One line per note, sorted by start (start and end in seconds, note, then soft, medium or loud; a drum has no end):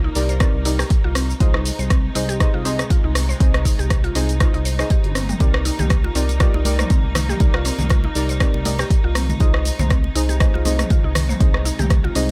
0.00 1.36 A#3 medium
0.00 0.13 D#4 medium
0.00 1.36 D#4 medium
0.00 0.13 G4 medium
0.00 0.13 A#4 medium
0.00 0.13 D5 medium
0.04 0.10 D#4 medium
0.15 0.46 C2 medium
0.15 0.31 D#4 loud
0.15 0.31 G4 medium
0.15 0.31 A#4 medium
0.15 0.31 D5 loud
0.15 open hi-hat medium
0.15 shaker medium
0.29 0.35 C5 medium
0.29 closed hi-hat soft
0.29 shaker medium
0.40 0.53 C4 medium
0.40 0.56 D#4 medium
0.40 0.56 G4 medium
0.40 0.56 A#4 medium
0.40 0.56 D5 loud
0.40 kick loud
0.40 cross-stick medium
0.40 closed hi-hat medium
0.40 shaker soft
0.54 0.84 C2 medium
0.65 0.75 D#4 medium
0.65 0.78 D#4 medium
0.65 0.75 G4 medium
0.65 0.75 A#4 medium
0.65 0.75 D5 medium
0.65 open hi-hat medium
0.65 shaker medium
0.79 0.85 G4 loud
0.79 cross-stick medium
0.79 open hi-hat medium
0.79 shaker medium
0.90 kick loud
0.90 closed hi-hat medium
0.90 shaker soft
1.04 1.34 C2 medium
1.04 1.14 F4 loud
1.15 1.28 C4 medium
1.15 cross-stick medium
1.15 open hi-hat medium
1.15 shaker medium
1.30 shaker medium
1.40 1.71 C2 loud
1.40 5.37 C3 medium
1.40 5.36 G#3 medium
1.40 2.13 D#4 medium
1.40 12.31 D#4 medium
1.40 1.53 F4 medium
1.40 2.13 G#4 medium
1.40 2.13 C5 medium
1.40 2.13 D#5 loud
1.40 kick loud
1.40 closed hi-hat medium
1.40 shaker soft
1.54 1.60 D#4 medium
1.54 cross-stick medium
1.65 open hi-hat medium
1.65 shaker medium
1.79 2.09 C2 loud
1.79 1.85 C5 medium
1.79 closed hi-hat soft
1.79 shaker soft
1.90 2.03 C4 medium
1.90 kick loud
1.90 cross-stick medium
1.90 closed hi-hat medium
1.90 shaker soft
2.15 2.46 C2 medium
2.15 2.28 D#4 medium
2.15 2.25 D#4 medium
2.15 2.25 G#4 medium
2.15 2.25 C5 medium
2.15 2.25 D#5 medium
2.15 open hi-hat medium
2.15 shaker medium
2.29 2.35 G4 loud
2.29 closed hi-hat soft
2.29 shaker medium
2.40 2.63 D#4 medium
2.40 2.63 G#4 medium
2.40 2.63 C5 medium
2.40 2.63 D#5 loud
2.40 kick loud
2.40 cross-stick medium
2.40 closed hi-hat medium
2.40 shaker soft
2.54 2.84 C2 medium
2.54 2.64 F4 loud
2.65 2.78 C4 medium
2.65 3.38 D#4 medium
2.65 3.38 G#4 medium
2.65 3.38 C5 medium
2.65 3.38 D#5 medium
2.65 open hi-hat medium
2.65 shaker medium
2.79 cross-stick medium
2.79 closed hi-hat soft
2.79 shaker soft
2.90 3.03 F4 medium
2.90 kick loud
2.90 closed hi-hat medium
2.90 shaker soft
3.04 3.34 C2 medium
3.04 3.10 D#4 medium
3.15 cross-stick medium
3.15 open hi-hat medium
3.15 shaker medium
3.29 3.35 C5 medium
3.29 shaker medium
3.40 3.71 C2 loud
3.40 3.53 C4 medium
3.40 4.13 D#4 medium
3.40 4.13 G#4 medium
3.40 4.13 C5 medium
3.40 4.13 D#5 medium
3.40 kick loud
3.40 closed hi-hat medium
3.40 shaker soft
3.54 cross-stick medium
3.54 closed hi-hat soft
3.65 3.78 D#4 medium
3.65 kick medium
3.65 open hi-hat medium
3.65 shaker medium
3.79 4.09 C2 medium
3.79 3.85 G4 loud
3.79 closed hi-hat soft
3.79 shaker soft
3.90 kick loud
3.90 cross-stick medium
3.90 closed hi-hat medium
3.90 shaker soft
4.04 4.14 F4 loud
4.04 closed hi-hat soft
4.15 4.46 C2 medium
4.15 4.28 C4 medium
4.15 4.31 D#4 loud
4.15 4.31 G#4 medium
4.15 4.31 C5 medium
4.15 4.31 D#5 loud
4.15 open hi-hat medium
4.15 shaker medium
4.29 closed hi-hat soft
4.29 shaker medium
4.40 4.56 D#4 medium
4.40 4.53 F4 medium
4.40 4.56 G#4 medium
4.40 4.56 C5 medium
4.40 4.56 D#5 loud
4.40 kick loud
4.40 cross-stick medium
4.40 closed hi-hat medium
4.40 shaker soft
4.54 4.84 C2 medium
4.54 4.60 D#4 medium
4.54 closed hi-hat soft
4.65 4.78 C5 medium
4.65 open hi-hat loud
4.65 shaker medium
4.79 4.87 D#4 medium
4.79 4.87 G#4 medium
4.79 4.89 C5 medium
4.79 4.87 C5 medium
4.79 4.87 D#5 loud
4.79 cross-stick medium
4.79 open hi-hat medium
4.79 shaker medium
4.90 5.03 G4 medium
4.90 kick loud
4.90 closed hi-hat medium
4.90 shaker soft
5.04 5.34 G1 medium
5.04 closed hi-hat soft
5.04 high tom medium
5.15 5.29 C4 loud
5.15 cross-stick medium
5.15 open hi-hat medium
5.15 mid tom medium
5.15 shaker medium
5.29 5.35 G3 medium
5.29 closed hi-hat soft
5.29 mid tom medium
5.29 shaker medium
5.40 5.71 C2 loud
5.40 9.36 A#3 medium
5.40 5.53 C4 medium
5.40 6.13 D#4 medium
5.40 6.13 G4 medium
5.40 6.13 A#4 medium
5.40 6.13 D5 loud
5.40 kick loud
5.40 closed hi-hat medium
5.40 muted conga medium
5.40 shaker soft
5.54 cross-stick loud
5.65 5.78 D#4 medium
5.65 open hi-hat medium
5.65 muted conga soft
5.65 shaker medium
5.79 6.09 C2 medium
5.79 5.85 G4 loud
5.79 closed hi-hat soft
5.79 mid tom medium
5.79 low conga loud
5.79 shaker medium
5.90 kick loud
5.90 cross-stick medium
5.90 closed hi-hat medium
5.90 high conga medium
5.90 shaker soft
6.04 6.14 F4 loud
6.04 muted conga medium
6.15 6.46 C2 medium
6.15 6.28 C4 medium
6.15 6.25 D#4 medium
6.15 6.25 G4 medium
6.15 6.25 A#4 medium
6.15 6.25 D5 medium
6.15 open hi-hat medium
6.15 shaker medium
6.29 closed hi-hat soft
6.29 muted conga soft
6.29 shaker medium
6.40 6.63 D#4 medium
6.40 6.53 F4 medium
6.40 6.63 G4 medium
6.40 6.63 A#4 medium
6.40 6.63 D5 loud
6.40 kick loud
6.40 cross-stick medium
6.40 closed hi-hat medium
6.40 high conga medium
6.40 shaker soft
6.54 6.84 C2 medium
6.54 6.60 D#4 medium
6.54 muted conga medium
6.65 7.38 D#4 medium
6.65 7.38 G4 medium
6.65 7.38 A#4 medium
6.65 7.38 D5 medium
6.65 open hi-hat medium
6.65 high conga loud
6.65 shaker medium
6.79 6.85 C5 medium
6.79 cross-stick medium
6.79 closed hi-hat soft
6.79 mid tom medium
6.79 muted conga soft
6.79 shaker medium
6.90 7.03 C4 medium
6.90 kick loud
6.90 closed hi-hat medium
6.90 high conga medium
6.90 shaker soft
7.04 7.34 C2 medium
7.15 7.28 D#4 medium
7.15 cross-stick medium
7.15 open hi-hat medium
7.15 muted conga medium
7.15 high conga medium
7.15 low conga loud
7.15 shaker medium
7.29 7.35 G4 loud
7.29 mid tom medium
7.29 shaker medium
7.40 7.71 C2 loud
7.40 8.13 D#4 medium
7.40 8.13 G4 medium
7.40 8.13 A#4 medium
7.40 8.13 D5 medium
7.40 kick loud
7.40 closed hi-hat medium
7.40 muted conga medium
7.40 shaker soft
7.54 7.64 F4 loud
7.54 cross-stick loud
7.65 7.78 C4 medium
7.65 open hi-hat medium
7.65 muted conga soft
7.65 shaker loud
7.79 8.09 C2 medium
7.79 closed hi-hat soft
7.79 mid tom medium
7.79 low conga loud
7.79 shaker medium
7.90 8.03 F4 medium
7.90 kick loud
7.90 cross-stick medium
7.90 closed hi-hat medium
7.90 high conga loud
7.90 shaker soft
8.04 8.10 D#4 medium
8.04 muted conga medium
8.15 8.46 C2 medium
8.15 8.31 D#4 loud
8.15 8.31 G4 medium
8.15 8.31 A#4 medium
8.15 8.31 D5 loud
8.15 open hi-hat medium
8.15 shaker loud
8.29 8.35 C5 medium
8.29 closed hi-hat soft
8.29 muted conga soft
8.29 shaker medium
8.40 8.53 C4 medium
8.40 8.56 D#4 medium
8.40 8.56 G4 medium
8.40 8.56 A#4 medium
8.40 8.56 D5 loud
8.40 kick loud
8.40 cross-stick loud
8.40 closed hi-hat medium
8.40 shaker soft
8.54 8.84 C2 medium
8.54 muted conga medium
8.65 8.75 D#4 medium
8.65 8.78 D#4 medium
8.65 8.75 G4 medium
8.65 8.75 A#4 medium
8.65 8.75 D5 medium
8.65 open hi-hat medium
8.65 high conga loud
8.65 shaker loud
8.79 8.85 G4 loud
8.79 cross-stick medium
8.79 open hi-hat medium
8.79 muted conga soft
8.79 high conga medium
8.79 shaker medium
8.90 kick loud
8.90 closed hi-hat medium
8.90 shaker soft
9.04 9.34 C2 medium
9.04 9.14 F4 loud
9.15 9.28 C4 medium
9.15 cross-stick medium
9.15 mid tom medium
9.15 open hi-hat medium
9.15 muted conga medium
9.15 shaker medium
9.29 high conga loud
9.29 low conga loud
9.29 shaker medium
9.40 9.71 C2 loud
9.40 12.31 C3 medium
9.40 12.31 G#3 medium
9.40 10.13 D#4 medium
9.40 9.53 F4 medium
9.40 10.13 G#4 medium
9.40 10.13 C5 medium
9.40 10.13 D#5 loud
9.40 kick loud
9.40 closed hi-hat medium
9.40 muted conga medium
9.40 shaker soft
9.54 9.60 D#4 medium
9.54 cross-stick medium
9.65 open hi-hat medium
9.65 muted conga soft
9.65 shaker medium
9.79 10.09 C2 medium
9.79 9.85 C5 medium
9.79 closed hi-hat soft
9.79 mid tom medium
9.79 low conga loud
9.79 shaker medium
9.90 10.03 C4 medium
9.90 kick loud
9.90 cross-stick medium
9.90 closed hi-hat medium
9.90 high conga medium
9.90 shaker soft
10.04 muted conga medium
10.15 10.46 C2 medium
10.15 10.28 D#4 medium
10.15 10.25 D#4 medium
10.15 10.25 G#4 medium
10.15 10.25 C5 medium
10.15 10.25 D#5 medium
10.15 open hi-hat medium
10.15 shaker loud
10.29 10.35 G4 loud
10.29 closed hi-hat soft
10.29 muted conga soft
10.29 shaker medium
10.40 10.63 D#4 loud
10.40 10.63 G#4 medium
10.40 10.63 C5 medium
10.40 10.63 D#5 loud
10.40 kick loud
10.40 cross-stick loud
10.40 closed hi-hat medium
10.40 high conga loud
10.40 shaker soft
10.54 10.84 C2 medium
10.54 10.64 F4 loud
10.54 muted conga medium
10.65 10.78 C4 medium
10.65 11.38 D#4 medium
10.65 11.38 G#4 medium
10.65 11.38 C5 medium
10.65 11.38 D#5 loud
10.65 open hi-hat medium
10.65 high conga loud
10.65 shaker loud
10.79 cross-stick medium
10.79 closed hi-hat soft
10.79 mid tom medium
10.79 muted conga soft
10.79 shaker medium
10.90 11.03 F4 medium
10.90 kick loud
10.90 closed hi-hat medium
10.90 high conga medium
10.90 shaker soft
11.04 11.34 C2 medium
11.04 11.10 D#4 medium
11.15 cross-stick medium
11.15 open hi-hat medium
11.15 muted conga soft
11.15 high conga medium
11.15 low conga loud
11.15 shaker loud
11.29 11.35 C5 medium
11.29 mid tom medium
11.29 shaker medium
11.40 11.71 C2 loud
11.40 11.53 C4 medium
11.40 12.13 D#4 medium
11.40 12.13 G#4 medium
11.40 12.13 C5 medium
11.40 12.13 D#5 loud
11.40 kick loud
11.40 closed hi-hat medium
11.40 muted conga soft
11.40 shaker soft
11.54 cross-stick medium
11.65 11.78 D#4 medium
11.65 open hi-hat medium
11.65 muted conga soft
11.65 shaker medium
11.79 12.09 C2 medium
11.79 11.85 G4 loud
11.79 closed hi-hat soft
11.79 mid tom medium
11.79 low conga loud
11.79 shaker medium
11.90 kick loud
11.90 cross-stick medium
11.90 closed hi-hat medium
11.90 high conga medium
11.90 shaker soft
12.04 12.14 F4 loud
12.04 muted conga soft
12.15 12.31 C2 medium
12.15 12.28 C4 medium
12.15 12.31 D#4 loud
12.15 12.31 G#4 medium
12.15 12.31 C5 medium
12.15 12.31 D#5 loud
12.15 open hi-hat medium
12.15 shaker loud